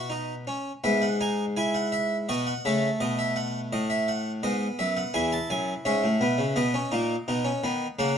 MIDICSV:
0, 0, Header, 1, 2, 480
1, 0, Start_track
1, 0, Key_signature, 4, "major"
1, 0, Tempo, 727273
1, 558, Time_signature, 4, 2, 24, 8
1, 1990, Tempo, 710059
1, 5481, End_track
2, 0, Start_track
2, 0, Title_t, "Harpsichord"
2, 0, Program_c, 0, 6
2, 0, Note_on_c, 0, 47, 55
2, 0, Note_on_c, 0, 66, 52
2, 0, Note_on_c, 0, 71, 55
2, 64, Note_on_c, 0, 63, 50
2, 67, Note_off_c, 0, 66, 0
2, 218, Note_off_c, 0, 63, 0
2, 290, Note_off_c, 0, 71, 0
2, 291, Note_off_c, 0, 47, 0
2, 312, Note_on_c, 0, 61, 51
2, 464, Note_off_c, 0, 61, 0
2, 553, Note_on_c, 0, 59, 60
2, 554, Note_on_c, 0, 76, 71
2, 555, Note_on_c, 0, 44, 59
2, 672, Note_on_c, 0, 78, 67
2, 673, Note_off_c, 0, 76, 0
2, 704, Note_off_c, 0, 59, 0
2, 792, Note_off_c, 0, 78, 0
2, 796, Note_on_c, 0, 63, 55
2, 797, Note_on_c, 0, 80, 70
2, 945, Note_off_c, 0, 63, 0
2, 946, Note_off_c, 0, 80, 0
2, 1033, Note_on_c, 0, 80, 73
2, 1038, Note_on_c, 0, 64, 59
2, 1151, Note_off_c, 0, 80, 0
2, 1151, Note_on_c, 0, 78, 65
2, 1269, Note_off_c, 0, 78, 0
2, 1269, Note_on_c, 0, 76, 69
2, 1419, Note_off_c, 0, 76, 0
2, 1487, Note_off_c, 0, 44, 0
2, 1500, Note_off_c, 0, 64, 0
2, 1510, Note_on_c, 0, 75, 73
2, 1512, Note_on_c, 0, 66, 62
2, 1513, Note_on_c, 0, 47, 60
2, 1628, Note_off_c, 0, 75, 0
2, 1628, Note_on_c, 0, 78, 68
2, 1661, Note_off_c, 0, 47, 0
2, 1661, Note_off_c, 0, 66, 0
2, 1746, Note_off_c, 0, 78, 0
2, 1751, Note_on_c, 0, 49, 56
2, 1752, Note_on_c, 0, 76, 72
2, 1754, Note_on_c, 0, 57, 56
2, 1898, Note_off_c, 0, 49, 0
2, 1900, Note_off_c, 0, 76, 0
2, 1983, Note_on_c, 0, 47, 57
2, 1984, Note_on_c, 0, 75, 66
2, 2104, Note_off_c, 0, 75, 0
2, 2106, Note_on_c, 0, 76, 66
2, 2224, Note_on_c, 0, 78, 74
2, 2226, Note_off_c, 0, 76, 0
2, 2375, Note_off_c, 0, 78, 0
2, 2454, Note_off_c, 0, 47, 0
2, 2470, Note_on_c, 0, 45, 65
2, 2471, Note_on_c, 0, 75, 78
2, 2588, Note_off_c, 0, 75, 0
2, 2588, Note_on_c, 0, 76, 75
2, 2707, Note_off_c, 0, 76, 0
2, 2711, Note_on_c, 0, 78, 70
2, 2861, Note_off_c, 0, 78, 0
2, 2926, Note_off_c, 0, 57, 0
2, 2938, Note_off_c, 0, 45, 0
2, 2948, Note_on_c, 0, 59, 61
2, 2949, Note_on_c, 0, 75, 75
2, 2950, Note_on_c, 0, 44, 60
2, 3099, Note_off_c, 0, 44, 0
2, 3099, Note_off_c, 0, 75, 0
2, 3189, Note_on_c, 0, 76, 78
2, 3192, Note_on_c, 0, 42, 62
2, 3306, Note_off_c, 0, 76, 0
2, 3309, Note_on_c, 0, 78, 73
2, 3340, Note_off_c, 0, 42, 0
2, 3414, Note_off_c, 0, 59, 0
2, 3426, Note_off_c, 0, 78, 0
2, 3426, Note_on_c, 0, 80, 82
2, 3428, Note_on_c, 0, 40, 66
2, 3429, Note_on_c, 0, 64, 67
2, 3544, Note_off_c, 0, 80, 0
2, 3552, Note_on_c, 0, 81, 74
2, 3577, Note_off_c, 0, 40, 0
2, 3667, Note_off_c, 0, 81, 0
2, 3671, Note_on_c, 0, 42, 60
2, 3672, Note_on_c, 0, 80, 80
2, 3819, Note_off_c, 0, 42, 0
2, 3820, Note_off_c, 0, 80, 0
2, 3894, Note_off_c, 0, 64, 0
2, 3908, Note_on_c, 0, 61, 61
2, 3910, Note_on_c, 0, 44, 61
2, 3910, Note_on_c, 0, 76, 76
2, 4026, Note_off_c, 0, 44, 0
2, 4033, Note_on_c, 0, 45, 60
2, 4057, Note_off_c, 0, 61, 0
2, 4147, Note_off_c, 0, 45, 0
2, 4150, Note_on_c, 0, 47, 66
2, 4150, Note_on_c, 0, 59, 65
2, 4265, Note_off_c, 0, 47, 0
2, 4266, Note_on_c, 0, 49, 68
2, 4298, Note_off_c, 0, 59, 0
2, 4374, Note_off_c, 0, 76, 0
2, 4383, Note_off_c, 0, 49, 0
2, 4386, Note_on_c, 0, 47, 73
2, 4387, Note_on_c, 0, 59, 86
2, 4389, Note_on_c, 0, 75, 74
2, 4504, Note_off_c, 0, 59, 0
2, 4509, Note_on_c, 0, 61, 76
2, 4536, Note_off_c, 0, 47, 0
2, 4625, Note_off_c, 0, 61, 0
2, 4628, Note_on_c, 0, 63, 81
2, 4632, Note_on_c, 0, 46, 66
2, 4777, Note_off_c, 0, 63, 0
2, 4780, Note_off_c, 0, 46, 0
2, 4873, Note_on_c, 0, 47, 69
2, 4875, Note_on_c, 0, 63, 78
2, 4985, Note_on_c, 0, 61, 70
2, 4989, Note_off_c, 0, 63, 0
2, 5021, Note_off_c, 0, 47, 0
2, 5103, Note_off_c, 0, 61, 0
2, 5114, Note_on_c, 0, 51, 72
2, 5114, Note_on_c, 0, 59, 85
2, 5262, Note_off_c, 0, 51, 0
2, 5262, Note_off_c, 0, 59, 0
2, 5324, Note_off_c, 0, 75, 0
2, 5351, Note_on_c, 0, 49, 71
2, 5352, Note_on_c, 0, 58, 83
2, 5354, Note_on_c, 0, 78, 74
2, 5468, Note_off_c, 0, 58, 0
2, 5481, Note_off_c, 0, 49, 0
2, 5481, Note_off_c, 0, 78, 0
2, 5481, End_track
0, 0, End_of_file